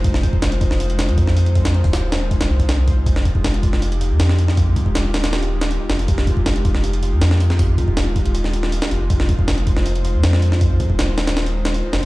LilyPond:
<<
  \new Staff \with { instrumentName = "Analog synth pad" } { \time 4/4 \key f \minor \tempo 4 = 159 << { c''1~ | c''1 | g'1~ | g'1~ |
g'1~ | g'1 | c''1~ | c''1 | } \\ { <aes ees' f'>1~ | <aes ees' f'>1~ | <aes ees' f'>1~ | <aes ees' f'>1~ |
<aes ees' f'>1~ | <aes ees' f'>1~ | <aes ees' f'>1~ | <aes ees' f'>1 | } >> }
  \new Staff \with { instrumentName = "Sub bass" } { \clef bass \time 4/4 \key f \minor f,,2~ f,,8. f,4~ f,16~ | f,8. ees,,4.~ ees,,16 c,4. | f,,2~ f,,8. f,4~ f,16~ | f,8. ees,,2~ ees,,8 r16 f,,8 |
f,,2~ f,,8. f,4~ f,16~ | f,8. ees,,2~ ees,,8 r16 f,,8 | f,,2~ f,,8. f,4~ f,16~ | f,8. ees,,2~ ees,,8 r16 f,,8 | }
  \new DrumStaff \with { instrumentName = "Drums" } \drummode { \time 4/4 <hho bd>16 sn16 <hho bd>16 bd16 <hho sn>16 hh16 <hho bd>16 sn16 hho16 hh16 <hho sn>16 hh16 <hho bd>16 sn16 hho16 hh16 | <hho bd>16 <hho sn>16 hh16 <hho bd>16 <hho sn>8 <hho sn>8 <hho bd>16 <hho sn>8 <hho bd>16 <hho sn>8 <hho bd>8 | <hho bd>16 sn16 <hho bd>16 bd16 <hho sn>16 hh16 <hho bd>16 sn16 hho16 hh16 hho8 <hho sn>16 sn16 hho16 sn16 | <hho bd>8 <hho bd>16 bd16 <hho sn>8 <hho sn>16 <hho sn>16 sn16 hho8 sn16 hho8 sn16 hho16 |
<hho bd>16 sn16 <hho bd>16 bd16 <hho sn>16 hh16 <hho bd>16 sn16 hho16 hh16 hho8 <hho sn>16 sn16 hho16 sn16 | <hho bd>8 <hho bd>16 bd16 <hho sn>8 <hho bd>16 hh16 hho16 sn16 hho16 sn16 hho16 sn16 hho8 | <hho bd>16 sn16 <hho bd>16 bd16 <hho sn>16 hh16 <hho bd>16 sn16 hho16 hh16 hho8 <hho sn>16 sn16 hho16 sn16 | <hho bd>8 <hho bd>16 bd16 <hho sn>8 <hho sn>16 <hho sn>16 sn16 hho8 sn16 hho8 sn8 | }
>>